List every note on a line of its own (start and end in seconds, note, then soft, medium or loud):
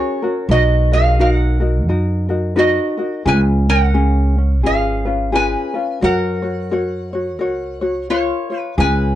0.00 0.22 C#4 medium
0.00 0.22 F#4 medium
0.00 0.46 F#4 medium
0.00 0.22 G#4 medium
0.00 0.21 A#4 medium
0.00 0.46 C#5 medium
0.22 0.50 C#4 soft
0.22 0.50 F#4 medium
0.22 0.49 A#4 medium
0.49 1.87 B1 medium
0.49 0.91 D#4 medium
0.49 0.91 F#4 medium
0.49 0.89 F#4 medium
0.49 0.90 A#4 medium
0.49 0.91 B4 medium
0.49 0.93 D#5 loud
0.92 1.18 D#4 soft
0.92 1.19 F#4 medium
0.92 1.18 G#4 medium
0.92 1.19 A#4 medium
0.92 1.21 F5 loud
1.19 1.60 D#4 medium
1.19 1.60 F#4 medium
1.19 1.59 A#4 medium
1.19 2.26 A#4 medium
1.19 1.32 F5 medium
1.32 2.26 F#5 medium
1.60 1.88 D#4 soft
1.60 1.88 F#4 soft
1.60 1.88 A#4 medium
1.87 2.77 F#2 medium
1.87 2.29 D#4 medium
1.87 2.29 F#4 medium
1.87 2.28 A#4 medium
2.29 2.55 D#4 soft
2.29 2.56 F#4 medium
2.29 2.56 A#4 medium
2.56 2.98 D#4 medium
2.56 2.97 F#4 medium
2.56 3.23 F#4 medium
2.56 2.96 A#4 medium
2.56 2.98 B4 medium
2.56 3.29 D#5 medium
2.97 3.25 D#4 soft
2.97 3.26 F#4 soft
2.97 3.25 A#4 soft
3.25 4.64 C#2 loud
3.25 3.67 C#4 medium
3.25 3.68 F4 medium
3.25 3.67 G#4 medium
3.25 3.68 B4 medium
3.25 3.38 B4 medium
3.25 3.39 G#5 loud
3.69 3.93 C#4 soft
3.69 4.61 A#4 medium
3.69 4.66 F#5 loud
3.94 4.36 C#4 medium
3.94 4.36 G#4 medium
4.38 4.63 C#4 soft
4.63 5.54 G#1 loud
4.63 5.05 C#4 medium
4.63 5.05 F4 medium
4.63 5.05 G#4 medium
4.63 5.30 G#4 medium
4.63 5.04 B4 medium
4.63 5.36 F5 medium
5.05 5.32 C#4 soft
5.05 5.32 F4 soft
5.05 5.33 B4 soft
5.32 5.74 C#4 medium
5.32 5.74 F4 medium
5.32 5.74 G#4 medium
5.32 5.73 B4 medium
5.32 5.99 B4 medium
5.32 6.04 G#5 loud
5.74 6.02 C#4 soft
5.74 6.01 F4 soft
5.74 6.02 B4 soft
6.01 7.40 F#2 medium
6.01 6.42 F#4 medium
6.01 6.43 A#4 medium
6.01 8.06 A#4 medium
6.01 6.41 C#5 medium
6.01 8.06 F#5 medium
6.42 6.70 F#4 soft
6.42 6.71 C#5 medium
6.71 7.13 F#4 medium
6.71 7.12 A#4 medium
6.71 7.12 C#5 medium
7.13 7.39 F#4 medium
7.13 7.40 C#5 medium
7.39 8.30 C#2 medium
7.39 7.81 F#4 medium
7.39 7.81 A#4 medium
7.39 7.80 C#5 medium
7.81 8.10 F#4 soft
7.81 8.09 C#5 medium
8.10 8.51 F4 medium
8.10 8.75 F4 medium
8.10 8.51 A#4 medium
8.10 8.58 C#5 medium
8.10 8.49 C#5 medium
8.50 8.78 F4 soft
8.50 8.77 C#5 soft
8.58 8.75 B4 medium
8.78 9.15 C#2 loud
8.78 9.15 C#4 medium
8.78 9.15 F4 medium
8.78 9.15 G#4 medium
8.78 9.15 B4 medium
8.78 9.15 G#5 loud